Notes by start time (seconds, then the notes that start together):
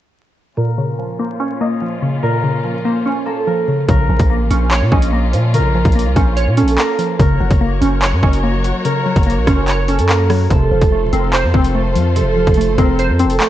0.57 A#2 A#3 C#4 F4 A#4
0.78 C#3
0.99 F3
1.19 A#3 C5
1.40 C#4 C#5
1.61 A#3 D#5
1.82 F3
2.02 C#3
2.23 A#2 A#4
2.44 C#3
2.64 F3
2.85 A#3 C5
3.06 C#4 C#5
3.26 A#3 A4
3.47 F3 A#4
3.68 C#3
3.89 A#1 C#3 A#3 C#4 F4 A#4, kick, closed hi-hat
4.09 A#1 F3
4.19 A#1, kick, closed hi-hat
4.30 A#3
4.40 A1
4.51 A#1 C#4 C5, closed hi-hat
4.71 C#5, clap, closed hi-hat
4.82 A#2
4.92 A#1 C#4 D#5, kick
5.02 closed hi-hat
5.13 A#3
5.33 A#2 F3, closed hi-hat
5.54 C#3 A#4, closed hi-hat
5.59 A#1
5.75 F3
5.85 A#1, kick, closed hi-hat
5.92 A#3, closed hi-hat
5.99 closed hi-hat
6.06 C2
6.16 A#1 C#4 C5, kick, closed hi-hat
6.37 C#5, closed hi-hat
6.47 A#2
6.57 C#4 A4, closed hi-hat
6.63 A#1
6.68 closed hi-hat
6.78 A#3 A#4, clap, closed hi-hat
6.99 F3, closed hi-hat
7.19 F#1 C#3 F#3 F#4 A#4 C#5, kick, closed hi-hat
7.40 F#1 F#3
7.50 F#1, kick, closed hi-hat
7.61 A#3
7.81 F#1 C#4 C5, closed hi-hat
8.02 C#5, clap, closed hi-hat
8.12 F#2
8.23 F#1 C#4 D#5, kick
8.33 closed hi-hat
8.44 A#3
8.64 F#3, closed hi-hat
8.85 C#3 A#4, closed hi-hat
9.06 F#3
9.16 F#1, kick, closed hi-hat
9.23 A#3, closed hi-hat
9.30 closed hi-hat
9.37 A#1
9.47 F#1 C#4 C5, kick, cross-stick, closed hi-hat
9.68 C#5, clap, closed hi-hat
9.88 C#4 A4, closed hi-hat
9.99 F#2, closed hi-hat
10.09 A#3 A#4, clap, closed hi-hat
10.30 F#3, cross-stick, open hi-hat
10.50 F1 C3 F3 F4 A4 C5, kick, closed hi-hat
10.71 F1 F3
10.81 F1, kick, closed hi-hat
10.92 A3
11.02 D#1
11.13 F1 C4 A#4, closed hi-hat
11.33 C5, clap, closed hi-hat
11.44 F2
11.54 F1 C4 C5, kick
11.64 closed hi-hat
11.75 A3
11.95 F2 F3, closed hi-hat
12.16 C3 A4, closed hi-hat
12.21 F1
12.37 F3
12.47 F1, kick, closed hi-hat
12.54 A3, closed hi-hat
12.61 closed hi-hat
12.68 F#1
12.78 F1 C4 A#4, kick, closed hi-hat
12.99 C5, closed hi-hat
13.09 F2
13.19 C4 A4, closed hi-hat
13.25 F1
13.30 closed hi-hat
13.40 A3 C5, clap, closed hi-hat